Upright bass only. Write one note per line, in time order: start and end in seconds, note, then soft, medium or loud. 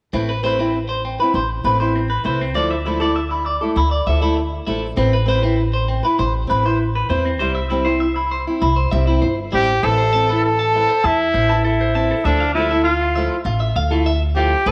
0.13 1.16 A1 medium
1.34 1.60 A1 medium
1.64 2.16 A1 medium
2.25 2.55 C2 medium
2.55 3.58 D2 medium
3.76 4.02 D2 medium
4.07 4.58 D2 medium
4.67 4.93 A1 medium
4.97 6.00 A1 medium
6.19 6.45 A1 medium
6.51 7.01 A1 medium
7.10 7.41 E2 medium
7.41 8.43 C2 medium
8.62 8.87 C2 medium
8.92 9.18 C2 medium
9.22 9.49 G1 medium
9.53 9.80 A1 medium
9.83 10.86 A1 medium
11.04 11.29 E2 medium
11.34 12.11 A1 medium
12.25 13.28 D2 medium
13.45 13.71 A1 medium
13.76 14.53 D2 medium
14.66 14.71 A1 medium